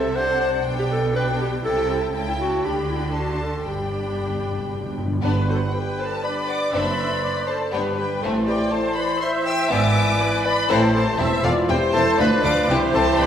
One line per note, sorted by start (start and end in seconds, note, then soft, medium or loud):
0.00 0.60 C2 medium
0.00 0.60 C3 medium
0.00 0.13 C4 medium
0.00 0.17 A4 loud
0.00 0.13 E5 medium
0.00 0.14 A5 medium
0.15 0.63 D4 medium
0.15 0.40 C5 loud
0.15 0.64 F#5 medium
0.15 0.63 A5 medium
0.41 0.51 C5 loud
0.63 1.64 B1 medium
0.63 1.63 B2 medium
0.63 1.12 D4 medium
0.63 1.12 G5 medium
0.63 1.13 G5 medium
0.79 0.84 G4 loud
0.92 1.15 A4 loud
1.13 1.62 D4 medium
1.13 1.27 B4 loud
1.13 1.63 G5 medium
1.13 1.62 G5 medium
1.41 1.51 G4 loud
1.63 2.12 C2 medium
1.63 2.12 C3 medium
1.63 2.12 E4 medium
1.63 1.89 A4 loud
1.63 2.12 G5 medium
1.63 2.13 A5 medium
1.90 2.01 A4 loud
2.13 2.62 C#2 medium
2.13 2.63 C#3 medium
2.13 2.62 E4 medium
2.13 2.62 G5 medium
2.13 2.63 A5 medium
2.28 2.33 E4 medium
2.40 2.66 F#4 loud
2.63 3.66 D2 medium
2.63 3.66 D3 medium
2.63 3.14 D4 medium
2.63 2.89 G4 medium
2.63 3.13 G5 medium
2.63 3.16 B5 medium
2.90 3.01 E4 medium
3.14 3.65 D4 medium
3.14 3.44 F#4 medium
3.14 3.66 A5 medium
3.14 3.66 C6 medium
3.42 3.67 A4 medium
3.64 4.99 G1 medium
3.64 5.00 G2 medium
3.64 3.73 G2 soft
3.64 5.00 D4 medium
3.64 4.95 G4 medium
3.64 4.99 G5 medium
3.64 5.03 B5 medium
3.74 3.81 G2 soft
3.82 3.89 G2 soft
3.90 3.96 G2 soft
3.97 4.03 G2 soft
4.04 4.11 G2 soft
4.12 4.19 G2 soft
4.21 4.28 G2 soft
4.30 4.35 G2 soft
4.36 4.44 G2 medium
4.45 4.51 G2 medium
4.52 4.58 G2 medium
4.60 4.65 G2 medium
4.67 4.74 G2 medium
4.75 4.82 G2 medium
4.83 4.89 G2 medium
4.90 4.97 G2 medium
4.98 5.04 G2 loud
5.05 5.12 G2 loud
5.13 5.21 G2 loud
5.22 5.65 G1 medium
5.22 5.94 G2 loud
5.22 5.65 G2 medium
5.22 5.70 G3 medium
5.22 5.46 B3 medium
5.22 5.46 D4 medium
5.22 5.71 D4 medium
5.22 5.70 B4 medium
5.22 5.47 B4 medium
5.48 5.59 F#4 medium
5.48 5.56 A4 medium
5.48 5.57 C5 medium
5.48 5.72 F#5 medium
5.72 6.23 G3 medium
5.72 6.23 D4 medium
5.72 5.98 G4 medium
5.72 5.78 B4 medium
5.72 6.22 B4 medium
5.72 6.23 B4 medium
5.72 5.99 G5 medium
5.98 6.26 A4 medium
5.98 6.04 C5 medium
5.98 6.24 A5 loud
6.23 6.73 G3 medium
6.23 6.73 D4 medium
6.23 6.75 B4 medium
6.23 6.50 B4 medium
6.23 6.29 D5 medium
6.23 6.73 D5 medium
6.23 6.48 B5 medium
6.48 6.76 D5 loud
6.48 6.54 F#5 medium
6.48 6.73 D6 loud
6.72 7.15 F#1 medium
6.72 7.14 F#2 medium
6.72 7.72 A3 medium
6.72 6.96 C4 medium
6.72 6.96 D4 medium
6.72 7.72 D4 medium
6.72 7.51 B4 loud
6.72 7.72 C5 medium
6.72 7.48 D5 loud
6.72 7.23 E5 medium
6.72 7.47 B5 loud
7.23 7.48 D5 medium
7.47 7.74 A4 medium
7.47 7.73 C5 medium
7.47 7.56 C5 medium
7.47 7.73 A5 medium
7.72 8.15 G1 medium
7.72 8.14 G2 medium
7.72 8.23 G3 medium
7.72 7.96 B3 medium
7.72 7.96 D4 medium
7.72 8.22 D4 medium
7.72 7.97 G4 loud
7.72 7.95 B4 medium
7.72 8.22 B4 medium
7.72 8.21 B4 medium
7.72 7.81 G5 medium
7.96 8.09 G4 medium
7.96 8.21 B4 medium
7.96 8.23 G5 medium
8.22 8.64 A1 medium
8.22 8.64 A2 medium
8.22 8.71 E3 medium
8.22 8.46 A3 medium
8.22 8.46 C4 medium
8.22 8.71 E4 medium
8.22 8.47 A4 medium
8.22 8.71 C5 medium
8.46 8.59 G4 medium
8.46 8.52 B4 medium
8.46 8.71 D5 medium
8.46 8.71 G5 loud
8.70 9.19 E3 medium
8.70 9.20 E4 medium
8.70 8.97 A4 medium
8.70 8.96 C5 medium
8.70 9.20 C5 medium
8.70 9.22 C5 medium
8.70 8.97 A5 loud
8.94 9.09 B4 medium
8.94 9.20 D5 medium
8.94 9.21 B5 loud
9.20 9.72 C5 medium
9.20 9.46 C5 loud
9.20 9.44 E5 medium
9.20 10.21 E5 loud
9.20 9.29 C6 loud
9.44 9.73 E5 loud
9.44 9.70 G5 loud
9.44 9.71 E6 loud
9.70 10.13 G#1 loud
9.70 10.12 G#2 medium
9.70 10.68 E3 medium
9.70 9.94 B3 medium
9.70 9.94 E4 medium
9.70 10.71 B4 medium
9.70 10.47 D5 loud
9.70 10.46 G#5 loud
9.70 10.44 D6 loud
10.20 10.46 B4 loud
10.45 10.69 B4 loud
10.45 10.69 D5 loud
10.45 10.71 D5 loud
10.45 10.69 B5 loud
10.69 11.11 A1 loud
10.69 11.11 A2 loud
10.69 11.17 E3 medium
10.69 10.93 C4 loud
10.69 10.93 E4 loud
10.69 11.17 E4 medium
10.69 10.81 A4 loud
10.69 10.94 C5 loud
10.69 11.18 C5 medium
10.69 11.19 C5 loud
10.69 10.94 A5 loud
10.95 11.06 A4 loud
10.95 11.19 C5 loud
10.95 11.20 A5 loud
11.18 11.27 E1 loud
11.18 11.28 E2 loud
11.18 11.67 E3 medium
11.18 11.28 C4 medium
11.18 11.26 E4 loud
11.18 11.68 E4 medium
11.18 11.51 C5 medium
11.18 11.45 E5 loud
11.43 11.52 E1 loud
11.43 11.52 E2 loud
11.43 11.52 C4 medium
11.43 11.52 E4 medium
11.43 11.71 F4 loud
11.43 11.49 A4 loud
11.43 11.53 D5 loud
11.43 11.51 F5 loud
11.68 11.77 E1 loud
11.68 11.77 E2 loud
11.68 12.18 E3 medium
11.68 11.77 C4 medium
11.68 12.18 E4 loud
11.68 11.78 E4 medium
11.68 11.96 G4 loud
11.68 11.91 C5 medium
11.68 12.21 C5 loud
11.68 12.19 C5 loud
11.68 11.77 G5 loud
11.92 12.02 E1 loud
11.92 12.03 E2 loud
11.92 12.20 A4 loud
11.92 12.19 C5 loud
11.92 12.18 A5 loud
11.96 12.04 C4 medium
11.96 12.04 E4 loud
12.18 12.27 D2 loud
12.18 12.28 D2 loud
12.18 12.69 F3 loud
12.18 12.69 D4 loud
12.18 12.28 D4 medium
12.18 12.28 F4 medium
12.18 12.70 B4 loud
12.18 12.69 B4 loud
12.18 12.43 B4 loud
12.18 12.44 D5 loud
12.18 12.27 B5 loud
12.42 12.51 D2 loud
12.42 12.52 D2 loud
12.42 12.52 D4 medium
12.42 12.53 F4 loud
12.42 12.69 D5 loud
12.42 12.68 F5 loud
12.42 12.68 D6 loud
12.67 12.77 C2 loud
12.67 13.27 C3 loud
12.67 12.77 C3 loud
12.67 13.27 E3 loud
12.67 13.27 E4 loud
12.67 12.79 E4 loud
12.67 13.27 G4 loud
12.67 12.78 G4 loud
12.67 13.27 C5 loud
12.92 13.02 C2 loud
12.92 13.01 C3 loud
12.92 13.06 A4 loud
12.92 12.98 C5 loud
12.92 13.17 A5 loud
12.97 13.05 E4 medium
12.97 13.05 G4 medium
13.18 13.27 C2 loud
13.18 13.26 C3 loud
13.18 13.27 G4 medium
13.18 13.27 B4 medium
13.18 13.27 D5 loud
13.18 13.27 B5 loud
13.22 13.27 E4 medium